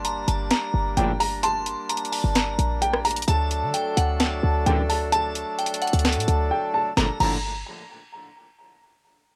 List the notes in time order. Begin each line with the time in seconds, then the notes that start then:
Already playing: G1 G3 A#3 D4 A5
0.05 A#5, closed hi-hat
0.28 G1 A5, closed hi-hat
0.51 A#5, finger snap, snare, closed hi-hat
0.74 G1
0.97 G1 A#1 A2 D3 G5, closed hi-hat
1.20 A#5, open hi-hat
1.43 A5 C6, closed hi-hat
1.66 closed hi-hat
1.89 A#5, closed hi-hat
1.97 closed hi-hat
2.05 closed hi-hat
2.12 A5, open hi-hat
2.24 G1
2.35 A#5, finger snap, snare, closed hi-hat
2.59 A#1, closed hi-hat
2.82 G5, closed hi-hat
2.93 cross-stick
3.05 A#5, closed hi-hat, open hi-hat
3.11 closed hi-hat
3.16 closed hi-hat
3.22 closed hi-hat
3.28 D2 F#3 A3 D4 A4 A5, closed hi-hat
3.51 closed hi-hat
3.62 D3
3.74 G5, closed hi-hat
3.97 D2 F#5, closed hi-hat
4.20 A5, finger snap, snare, closed hi-hat
4.43 D2
4.66 A1 D2 F#2 D3 G5, closed hi-hat
4.89 A5, open hi-hat
5.12 A5, closed hi-hat
5.35 closed hi-hat
5.58 G5, closed hi-hat
5.66 closed hi-hat
5.74 closed hi-hat
5.82 F#5, closed hi-hat
5.87 closed hi-hat
5.93 D2, closed hi-hat
5.99 closed hi-hat
6.05 A5, finger snap, snare, closed hi-hat
6.12 A2, closed hi-hat
6.20 closed hi-hat
6.28 D2, closed hi-hat
6.51 G5
6.74 A5
6.97 G1 A#1 A2 D3 G3 A#3 D4 A4 A#5, snare
7.20 G1 A#1 A2 D3 A#5, crash